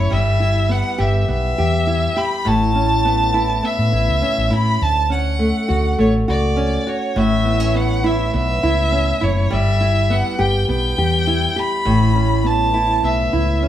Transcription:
Already playing: A2 B3 C#4 E4 C#5
0.10 G1 G3 E5
0.40 E4
0.69 B3 F#5
0.98 G1 G4 E5
1.28 B1 B3 E5
1.58 E2 G4
1.87 E4
2.16 G4 B5
2.45 A1 A2 A5
2.75 C#4
3.05 B3
3.34 E4
3.63 B3 E5
3.79 A2
3.92 A1 E4
4.08 C#2
4.22 C#4
4.38 A1
4.50 A2 E4 B5
4.82 D2 A5
5.10 C#4 F#5
5.39 A3
5.68 D2 F#4
5.98 A1 A3 C#5
6.28 C#2 F#4 D5
6.57 C#4
6.87 F#4 C#5
7.16 A1 A2 E5
7.45 B3
7.60 C#4
7.74 B3 F#5
8.04 E4 E5
8.34 B1 B3 E5
8.63 C#2 E4
8.92 C#4
9.21 F#1 E4 C#5
9.50 G1 G3 E5
9.81 E4
10.10 B3 F#5
10.39 G1 G4 G5
10.69 B1 B3 G5
10.98 E2 G4
11.27 E4
11.56 G4 B5
11.85 A1 A2
12.15 C#4
12.44 B3 A5
12.74 E4
13.03 B1 B3 E5
13.33 C#2 E4
13.62 C#4

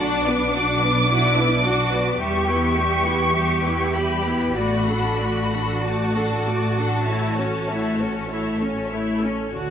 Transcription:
Already playing: D5 F#5
0.00 B1 D4 F#4 D6
0.26 B3 D4 B4 D5
0.53 D4 F#4 D5 F#5
0.79 B3 D4 B4 D5
1.08 D4 E4 F#4 D5 F#5
1.36 B3 D4 B4 D5
1.62 D4 F#4 D5 F#5
1.92 B3 D4 B4 D5
2.20 E2 G3 G4 E5 C#6
2.46 B3 E4 B4 G5
2.74 G3 G4 E5
3.04 B3 E4 B4 G5
3.34 G3 G4 E5
3.62 B3 E4 B4 G5
3.93 G3 G4 E5 B5
3.97 G4
4.22 B4 G5
4.27 B3 E4
4.54 A1 F#4 D5 B5
4.58 A3
4.84 A4 F#5
4.90 D4 A4
5.16 F#4 D5
5.21 A3 F#4
5.49 A4 F#5
5.53 D4 A4
5.80 F#4 D5 A5
5.85 A3 F#4
6.14 D4 A4 F#5
6.41 F#4 D5
6.48 A3 F#4
6.71 A4 F#5
6.79 D4 A4
7.04 C#5 E5
7.09 A3 E4
7.35 A4 C#5
7.40 C#4
7.67 A3 E4 C#5 E5
7.98 C#4 A4 C#5
8.29 A3 E4 C#5 E5
8.57 A4 C#5
8.62 C#4
8.88 C#5 E5
8.93 A3 E4
9.18 A4 C#5
9.23 C#4
9.52 D2 D3 F#4 D5

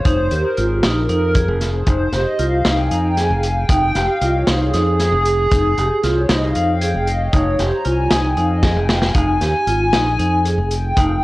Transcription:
0.05 F1 D#4, kick, closed hi-hat
0.31 D#2 G4, closed hi-hat
0.57 G#1 F4, closed hi-hat
0.83 A#1 D#4, snare, closed hi-hat
1.09 F2 D#4, closed hi-hat
1.34 G#4, kick, closed hi-hat
1.48 F1
1.61 snare, closed hi-hat
1.87 F1 D#4, kick, closed hi-hat
2.12 F1 G4, snare, closed hi-hat
2.39 C2 F4, closed hi-hat
2.65 C2 D#4, snare, closed hi-hat
2.91 F2 D#4, closed hi-hat
3.17 G#4, snare, closed hi-hat
3.30 F1
3.43 closed hi-hat
3.69 F1 D#4, kick, closed hi-hat
3.95 F1 G4, snare, closed hi-hat
4.21 C2 F4, closed hi-hat
4.47 C2 D#4, snare, closed hi-hat
4.59 G#4
4.73 F2 D#4, snare, closed hi-hat
5.00 G#4, snare, closed hi-hat
5.12 F1
5.25 closed hi-hat
5.51 F1 D#4, kick, closed hi-hat
5.77 F1 G4, closed hi-hat
6.03 C2 F4, snare, closed hi-hat
6.29 C2 D#4, snare, closed hi-hat
6.55 F2 D#4, closed hi-hat
6.81 G#4, closed hi-hat
6.94 F1
7.07 closed hi-hat
7.33 F1 D#4, kick, closed hi-hat
7.59 F1 G4, snare, closed hi-hat
7.85 C2 F4, closed hi-hat
8.11 C2 D#4, snare, closed hi-hat
8.37 F2 D#4, closed hi-hat
8.63 G#4, kick, snare
8.76 F1
8.89 snare
9.02 G#5, snare
9.14 F1 D#4, kick, closed hi-hat
9.41 D#2 G4, snare, closed hi-hat
9.67 G#1 F4, closed hi-hat
9.93 A#1 D#4, snare, closed hi-hat
10.19 F2 D#4, closed hi-hat
10.45 G#4, closed hi-hat
10.58 F1
10.71 closed hi-hat
10.97 F1 D#4, kick, closed hi-hat

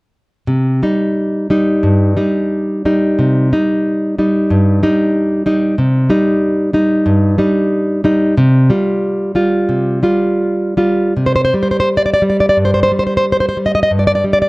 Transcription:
0.47 C3
0.83 G3 D#4
1.50 G3 D#4
1.83 G2
2.17 G3 D#4
2.85 G3 D#4
3.19 C3
3.53 G3 D#4
4.18 G3 D#4
4.50 G2
4.83 G3 D#4
5.46 G3 D#4
5.78 C3
6.10 G3 D#4
6.73 G3 D#4
7.06 G2
7.38 G3 D#4
8.04 G3 D#4
8.38 C3
8.70 G3 F4
9.35 G3 F4
9.69 C3
10.03 G3 F4
10.77 G3 F4
11.17 C3
11.26 C5
11.36 C5
11.45 C5
11.54 G3
11.63 C5
11.71 C5
11.80 C5
11.97 D5
12.06 D5
12.14 D5
12.22 G3
12.30 D5
12.40 D5
12.49 D5
12.57 G2
12.65 C5
12.74 C5
12.83 C5
12.92 G3
12.99 C5
13.07 C5
13.17 C5
13.32 C5
13.40 C5
13.49 C5
13.57 G3
13.66 D#5
13.75 D#5
13.83 D#5
13.91 G2
13.99 D5
14.07 D5
14.15 D5
14.24 G3
14.33 D5
14.42 D5

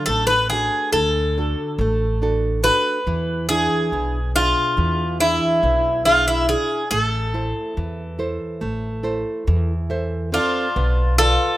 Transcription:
Already playing: F#3 D4 A4
0.06 A1 A3 A4
0.27 B4
0.50 D4 F#4 G#4
0.93 D2 D3 A4
1.38 D4 F#4 A4
1.78 A1 A3
2.22 D4 F#4 A4
2.64 D4 F#4 A4 B4
3.07 E2 E3
3.49 D4 E4 G#4
3.92 B1 B2
4.35 D4 F4 G#4 E5
4.77 E2 E3
5.20 D4 E4 G#4
5.63 B1 B2
6.05 D4 E4 F4 G#4
6.28 E4
6.49 D4 E4 G#4
6.91 A1 A3 A4
7.34 E4 A4 C5
7.77 E2 E3
8.19 E4 A4 C5
8.61 A1 A3
9.03 E4 A4 C5
9.47 E2 E3
9.90 A4 C5 E5
10.32 C4 D4 F4 A4 C5
10.76 B1 B3
11.18 F4 A4 B4 D5

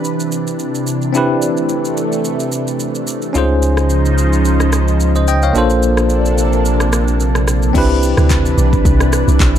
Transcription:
Already playing: C3 E3 C4 D4 E4 G4 B4
0.04 shaker
0.20 shaker
0.32 shaker
0.47 shaker
0.59 shaker
0.75 shaker
0.87 shaker
1.02 shaker
1.13 A3 C4 D4 E4 G4, shaker
1.17 B4
1.42 shaker
1.57 shaker
1.69 shaker
1.85 shaker
1.97 shaker
2.12 shaker
2.25 shaker
2.40 shaker
2.52 shaker
2.67 shaker
2.80 shaker
2.95 shaker
3.07 shaker
3.22 shaker
3.33 C#2 C#3 F3 C#4 D#4 F4 G#4 C5, shaker
3.38 C5
3.62 shaker
3.77 cross-stick, shaker
3.90 shaker
4.05 shaker
4.18 shaker
4.33 shaker
4.45 shaker
4.60 cross-stick, shaker
4.72 cross-stick, shaker
4.88 shaker
5.00 shaker
5.15 C5 D#5, shaker
5.28 D#5 G5, shaker
5.42 C#5 F5, shaker
5.53 A#1 C3 A#3 D4 F4 A4, shaker
5.58 C5
5.70 shaker
5.83 shaker
5.97 cross-stick, shaker
6.10 shaker
6.25 shaker
6.38 shaker
6.53 shaker
6.65 shaker
6.80 cross-stick, shaker
6.93 cross-stick, shaker
7.08 shaker
7.20 shaker
7.35 cross-stick, shaker
7.48 cross-stick, shaker
7.62 shaker
7.73 C2 C3 E3 C4 D4 E4 G4 B4, kick, crash, shaker
7.78 B4
8.03 shaker
8.17 D2, cross-stick, shaker
8.30 kick, clap, shaker
8.46 shaker
8.58 B1, shaker
8.73 kick, shaker
8.85 C2, kick, shaker
9.00 cross-stick, shaker
9.13 cross-stick, shaker
9.28 C2, shaker
9.40 B1, kick, clap, shaker

